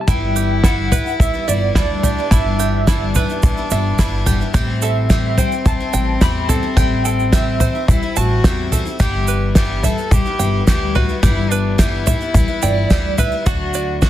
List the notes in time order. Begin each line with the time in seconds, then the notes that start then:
Already playing: G3 B3
0.01 A5
0.08 G1 G2 D3 E3 G3 B3 E4 G5, kick, floor tom, shaker
0.36 G4, shaker
0.64 G2 D3 E3 G3 B3 E4 F#5, kick, snare, shaker
0.91 E3 G3 B3 E4 B4, floor tom, shaker
1.06 E3 G3 B3 E4, shaker
1.20 E3 G3 B3 E4 E5, kick, floor tom, shaker
1.34 E3 G3 B3 E4
1.48 G1 E3 G3 B3 E4 D5 E5, shaker
1.75 D2 G2 D3 E3 G3 B3 D4 E4 D5, kick, snare, shaker
2.03 E3 G3 B3 E4 G4, floor tom, shaker
2.18 E3 G3 B3 E4
2.31 G1 G2 D3 E3 G3 B3 E4 E5, kick, floor tom, shaker
2.59 G4, shaker
2.87 G2 D3 E3 G3 B3 D4 E4, kick, snare, shaker
3.15 E3 G3 B3 E4 B4, floor tom, shaker
3.29 E3 G3 B3 E4, shaker
3.43 E3 G3 B3 E4, kick, floor tom, shaker
3.57 E3 G3 B3 E4
3.70 G1 E3 G3 B3 E4 E5, shaker
3.99 G1 G2 D3 E3 G3 B3 E4, kick, snare, shaker
4.26 E3 G3 B3 E4 G4, floor tom, shaker
4.41 E3 G3 B3 E4
4.54 A1 A2 E3 G3 C4 E4 G4, kick, floor tom, shaker
4.82 A4 E5, shaker
5.10 A2 E3 G3 C4 E4 G4, kick, snare, shaker
5.38 E3 G3 C4 E4 C5 G5, floor tom, shaker
5.52 G3 C4 E4, shaker
5.65 E3 G3 C4 E4 A5, kick, floor tom, shaker
5.80 G3 C4 E4
5.93 A1 E3 G3 C4 E4 G5, shaker
6.21 E2 A2 E3 G3 C4 E4 G4 B5, kick, snare, shaker
6.49 E3 G3 C4 E4 A4 A5, floor tom, shaker
6.63 G3 C4 E4
6.77 A1 A2 E3 G3 C4 E4 G4 G5, kick, floor tom, shaker
7.05 A4 G5, shaker
7.19 shaker
7.32 A2 E3 G3 C4 E4 G4 E5, kick, snare, shaker
7.60 E3 G3 C4 E4 C5, floor tom, shaker
7.75 G3 C4 E4
7.88 E3 G3 C4 E4, kick, floor tom, shaker
8.03 G3 C4 E4
8.16 A1 E3 G3 C4 E4 F#4 A5, shaker
8.44 E2 A2 E3 G3 C4 E4 G4, kick, snare, shaker
8.72 E3 G3 C4 E4 A4, floor tom, shaker
8.85 G3 C4 E4, shaker
9.00 G1 G2 D3 E3 G3 B3 E4 G4, kick, floor tom, shaker
9.28 B4, shaker
9.55 G2 D3 E3 G3 B3 E4 G4, kick, snare, shaker
9.83 E3 G3 B3 E4 A4 E5, floor tom, shaker
9.98 E3 G3 B3 E4, shaker
10.11 E3 G3 B3 E4 G4, kick, floor tom, shaker
10.26 E3 G3 B3 E4
10.39 G1 E3 G3 B3 E4 G5, shaker
10.67 D2 G2 D3 E3 G3 B3 E4 G4, kick, snare, shaker
10.95 E3 G3 B3 E4 F#4 B4, floor tom
11.09 E3 G3 B3 E4
11.23 G1 G2 D3 E3 G3 B3 E4 G4, kick, floor tom, shaker
11.51 D4 B4, shaker
11.78 G2 D3 E3 G3 B3 E4 G4, kick, snare, shaker
12.06 E3 G3 B3 E4 E5, floor tom, shaker
12.21 E3 G3 B3 E4, shaker
12.34 E3 G3 B3 E4, kick, floor tom, shaker
12.48 E3 G3 B3 E4
12.62 G1 E3 G3 B3 E4 D5 G5, shaker
12.90 D2 G2 D3 E3 G3 B3 E4 G4, kick, snare, shaker
13.18 E3 G3 B3 E4 B4 E5, floor tom, shaker
13.32 E3 G3 B3 E4
13.46 D2 D3 F#3 A3 D4 E4 F#4 F#5, kick, floor tom, shaker
13.74 D5, shaker
14.01 D3 F#3 A3 D4 E4 F#4, kick, snare, shaker